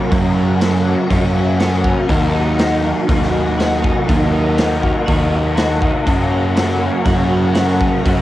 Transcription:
Already playing: F#2 C#3 F#3 A#3 C#4 F#4 A#4 C#5 A#5
0.10 F#2 C#3 F#3 A#3 C#4 F#4 D#5, kick, open hi-hat
0.35 A#3
0.59 F#3 A#3 C#4 F#4, snare, open hi-hat
0.83 F#3 A#3 C#4 F#4
1.08 F#2 C#3 F#3 A#3 C#4 F#4, kick, open hi-hat
1.35 F#3
1.57 F#3 A#3 C#4 F#4, snare, open hi-hat
1.84 A#3, kick
2.08 D#2 D#3 F#3 A#3 D#4 F#4 A#5, kick, open hi-hat
2.36 D#4
2.58 D#3 A#3 D#4 F#4, snare, open hi-hat
2.82 A#3 D#4 F#4
3.07 D#2 D#3 A#3 D#4 F#4, kick, open hi-hat
3.22 snare
3.33 A#3
3.58 D#3 A#3 D#4 F#4, snare, open hi-hat
3.82 D#4, kick
4.07 D#2 D#3 A#3 D#4 F#4, kick, open hi-hat
4.33 D#4
4.57 D#3 A#3 D#4 F#4, snare, open hi-hat
4.82 A#3 D#4 F#4, kick
5.06 D#2 D#3 A#3 D#4 F#4, kick, open hi-hat
5.31 A#3
5.56 D#3 A#3 D#4 F#4, snare, open hi-hat
5.81 D#4, kick
6.05 F#2 C#3 F#3 A#3 C#4 F#4 C#5, kick, open hi-hat
6.31 A#3
6.55 F#3 A#3 C#4 F#4, snare, open hi-hat
6.80 A#3 C#4 F#4
6.84 F#3
7.05 F#2 C#3 F#3 A#3 C#4 F#4, kick, open hi-hat
7.28 A#3
7.54 F#3 A#3 C#4 F#4, snare, open hi-hat
7.59 F#4
7.81 C#4, kick
8.04 F#2 C#3 F#3 A#3 C#4 F#4 D#5, kick, open hi-hat

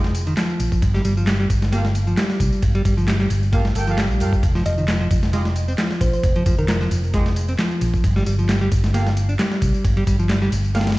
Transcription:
Already playing: F1
0.04 snare, tambourine
0.15 ride, tambourine
0.27 D#3, ride, tambourine
0.37 F3, snare, clap, ride, tambourine
0.50 tambourine
0.60 A#1, ride, tambourine
0.72 kick, tambourine
0.82 G1, kick, ride, tambourine
0.94 G3, snare, tambourine
1.05 G1 G3, ride, tambourine
1.17 F3, tambourine
1.27 G3, snare, clap, ride, tambourine
1.40 G3, tambourine
1.50 G1, kick, ride, tambourine
1.62 snare, tambourine
1.72 A#3 F4 G4 A4 F5, ride, tambourine
1.85 snare, tambourine
1.95 ride, tambourine
2.07 F3, tambourine
2.17 G3, snare, clap, ride, tambourine
2.30 snare, tambourine
2.40 C2, kick, ride, tambourine
2.53 tambourine
2.62 G1, kick, ride, tambourine
2.75 G3, ride, tambourine
2.85 G1 G3, kick, ride, tambourine
2.97 F3, tambourine
3.07 G3, snare, clap, ride, tambourine
3.20 G3, snare, tambourine
3.30 G1, ride, tambourine
3.43 tambourine
3.53 A#3 F4 G4 A4 F5, kick, ride, tambourine
3.65 snare, tambourine
3.75 G1 A#3 G4 A4 G5, ride, tambourine
3.87 F3 A#3 F4 G4 A4 F5, ride, tambourine
3.98 G3, snare, clap, ride, tambourine
4.10 A#1, tambourine
4.20 G2 A#3 F4 G4 A4 F5, ride, tambourine
4.33 kick, tambourine
4.43 F1, kick, ride, tambourine
4.55 F3, snare, tambourine
4.66 F1 F3 D#5, ride, tambourine
4.78 D#3, tambourine
4.88 F3, snare, clap, ride, tambourine
5.00 F3, tambourine
5.11 F1, kick, ride, tambourine
5.23 snare, tambourine
5.33 G#3 D#4 F4 G4 D#5, ride, tambourine
5.45 snare, tambourine
5.56 ride, tambourine
5.68 C4, tambourine
5.78 F3, snare, clap, ride, tambourine
5.91 snare, tambourine
6.01 A#1 C5, kick, ride, tambourine
6.13 C5, tambourine
6.23 F1, kick, ride, tambourine
6.36 F3, ride, tambourine
6.46 F1 F3, kick, ride, tambourine
6.58 D#3 A#4, tambourine
6.68 F3 A#4, snare, clap, ride, tambourine
6.81 F3, snare, tambourine
6.91 F1, ride, tambourine
7.04 tambourine
7.14 G#3 D#4 F4 G4 D#5, kick, ride, tambourine
7.26 snare, tambourine
7.36 ride, tambourine
7.48 C4, ride, tambourine
7.59 F3, snare, clap, ride, tambourine
7.71 tambourine
7.81 A#1, ride, tambourine
7.94 kick, tambourine
8.04 G1, kick, ride, tambourine
8.16 G3, snare, tambourine
8.26 G1 G3, ride, tambourine
8.39 F3, tambourine
8.49 G3, snare, clap, ride, tambourine
8.61 G3, tambourine
8.72 G1, kick, ride, tambourine
8.84 snare, tambourine
8.94 A#3 F4 G4 A4 F5, ride, tambourine
9.07 snare, tambourine
9.17 ride, tambourine
9.29 D4, tambourine
9.39 G3, snare, clap, ride, tambourine
9.52 snare, tambourine
9.62 C2, kick, ride, tambourine
9.74 tambourine
9.84 G1, kick, ride, tambourine
9.97 G3, ride, tambourine
10.07 G1 G3, kick, ride, tambourine
10.19 F3, tambourine
10.30 G3, snare, clap, ride, tambourine
10.42 G3, snare, tambourine
10.52 G1, ride, tambourine
10.64 tambourine
10.75 A#3 F4 G4 A4 F5, snare, ride, tambourine
10.81 snare, ride
10.87 snare, ride, tambourine
10.92 snare, ride

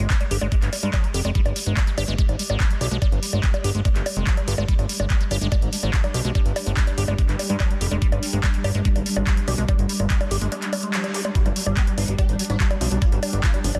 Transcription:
Already playing: G3 G4 D5 D6
0.00 G#3
0.10 F3, kick, clap, closed hi-hat
0.21 G3, closed hi-hat, high bongo
0.31 G1 G4, open hi-hat
0.41 G1 G#3, closed hi-hat, high bongo
0.52 G#3, kick, closed hi-hat
0.62 G1, clap, closed hi-hat
0.73 G3, open hi-hat, high bongo
0.83 G2 G#3, closed hi-hat
0.93 F3, kick, clap, closed hi-hat, high bongo
1.04 G3, closed hi-hat
1.14 F1 G4, open hi-hat
1.25 F1 G#3, closed hi-hat, high bongo
1.35 G3, kick, closed hi-hat
1.46 G1, closed hi-hat, high bongo
1.56 G3, open hi-hat
1.66 G1 G#3, closed hi-hat
1.77 F3, kick, clap, closed hi-hat, high bongo
1.87 G3, closed hi-hat
1.98 G1 G4, open hi-hat, high bongo
2.08 G1 G#3, closed hi-hat
2.18 G#3, kick, closed hi-hat
2.29 G#1, closed hi-hat, high bongo
2.39 G3, open hi-hat
2.50 G#1 G#3, high bongo
2.60 F3, kick, clap, closed hi-hat
2.71 G3, closed hi-hat
2.81 B1 G4, open hi-hat, high bongo
2.91 B1 G#3, closed hi-hat
3.02 G3, kick, closed hi-hat, high bongo
3.12 G1, closed hi-hat
3.23 G3, open hi-hat
3.33 G1 G#3, closed hi-hat, high bongo
3.43 F3, kick, clap, closed hi-hat
3.54 G3, closed hi-hat, high bongo
3.64 G1 G4, open hi-hat
3.75 G1 G#3, closed hi-hat
3.85 G#3, kick, closed hi-hat, high bongo
3.96 G1, clap, closed hi-hat
4.06 G3, open hi-hat, high bongo
4.16 F1 G#3, closed hi-hat
4.27 F3, kick, clap, closed hi-hat
4.37 G3, closed hi-hat, high bongo
4.48 G1 G4, open hi-hat
4.58 G1 G#3, closed hi-hat, high bongo
4.68 G3 D4, kick, closed hi-hat
4.79 G1, closed hi-hat, high bongo
4.89 G3, open hi-hat
5.00 G1 G#3, closed hi-hat, high bongo
5.10 G3, kick, clap, closed hi-hat
5.21 G3, closed hi-hat
5.31 G1 G4, open hi-hat, high bongo
5.41 G1 G#3, closed hi-hat
5.52 G#3, kick, closed hi-hat, high bongo
5.62 G#1, closed hi-hat
5.73 G3, open hi-hat
5.83 G#1 G#3, closed hi-hat, high bongo
5.93 F3, kick, clap, closed hi-hat
6.04 G3, closed hi-hat, high bongo
6.14 B1 G4, open hi-hat
6.25 B1 G#3, closed hi-hat
6.35 G3, kick, closed hi-hat, high bongo
6.46 G1, closed hi-hat
6.56 G3, open hi-hat, high bongo
6.66 G1 G#3, closed hi-hat
6.77 G3, kick, clap, closed hi-hat
6.87 G3, closed hi-hat, high bongo
6.98 G1 G4, open hi-hat
7.08 G1 G#3, closed hi-hat, high bongo
7.18 G#3, kick, closed hi-hat
7.29 G1, clap, closed hi-hat
7.39 G3, open hi-hat, high bongo
7.50 G2 G#3, closed hi-hat
7.60 F3, kick, clap, closed hi-hat, high bongo
7.71 G3, closed hi-hat
7.81 F1 G4, open hi-hat
7.91 F1 G#3, closed hi-hat, high bongo
8.02 G3, kick, closed hi-hat
8.12 G1, closed hi-hat, high bongo
8.23 G3, open hi-hat
8.33 G1 G#3, closed hi-hat
8.43 G3, kick, clap, closed hi-hat, high bongo
8.54 G3, closed hi-hat
8.64 G1 G4, open hi-hat, high bongo
8.75 G1 G#3, closed hi-hat
8.85 G#3, kick, closed hi-hat
8.96 G#1, closed hi-hat, high bongo
9.06 G3, open hi-hat
9.16 G#1 G#3, high bongo
9.27 F3, kick, clap, closed hi-hat
9.37 G3, closed hi-hat
9.48 B1 G4, open hi-hat, high bongo
9.58 B1 G#3, closed hi-hat
9.69 G3, kick, closed hi-hat, noise sweep, high bongo
9.79 G1, closed hi-hat
9.89 G3, open hi-hat
10.00 G1 G#3, closed hi-hat, high bongo
10.10 G3, kick, clap, closed hi-hat
10.21 G3, closed hi-hat, high bongo
10.31 G1 G4, open hi-hat
10.41 G1 G#3, closed hi-hat
10.52 G#3, closed hi-hat, high bongo
10.62 clap, closed hi-hat
10.73 G3, open hi-hat, high bongo
10.83 G#3, closed hi-hat
10.94 F3, clap, closed hi-hat
11.04 G3, closed hi-hat, high bongo
11.14 G4, open hi-hat, zap
11.25 G#3, closed hi-hat, high bongo
11.35 G3 D4 G4, kick, closed hi-hat
11.46 G1 G3, closed hi-hat, high bongo
11.56 G3, open hi-hat
11.66 G1 G3 G4, high bongo
11.75 G3 G4, kick, clap, closed hi-hat
11.87 G3, closed hi-hat
11.92 D5
11.98 G1 F3 D#4, open hi-hat, high bongo
12.08 G1 G3 G#3, closed hi-hat
12.18 G4, kick, closed hi-hat, high bongo
12.29 G#1 G3 G#3, closed hi-hat
12.35 D6
12.39 G3, open hi-hat
12.45 closed hi-hat
12.50 G#1 G#3 D4, closed hi-hat, high bongo
12.60 G3, kick, clap, closed hi-hat
12.71 G3, closed hi-hat, high bongo
12.81 B1 F3 D4, open hi-hat
12.91 B1 G3 G#3, closed hi-hat
13.02 G3 F4, kick, closed hi-hat, high bongo
13.12 G1 G3, closed hi-hat
13.23 G3, open hi-hat, high bongo
13.33 G1 G3 G4, closed hi-hat
13.43 G3 F4, kick, clap, closed hi-hat
13.54 G3, closed hi-hat, high bongo
13.64 G1 F3 D4, open hi-hat
13.75 G1 G3 G#3, closed hi-hat, high bongo

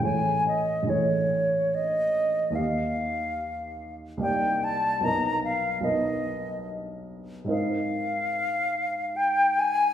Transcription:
0.00 A1 A3 E4 G#4 G#5
0.05 C#5
0.48 D#5
0.83 A1 A3 E4
0.87 G#4 C#5
1.75 D#5
2.50 D#2 A#3 D#4
2.54 G4 D#5 F5
4.17 C2 A#3 D#4
4.22 G4 D5 G5
4.64 A5
5.00 B1 B3 D#4 A#5
5.05 A#4 D#5
5.44 F5
5.81 B1 B3 D#4 A#4 D#5
5.87 D#5
7.45 G#2 C4 D#4
7.49 A#4 D#5 F5
9.16 G5
9.59 G#5

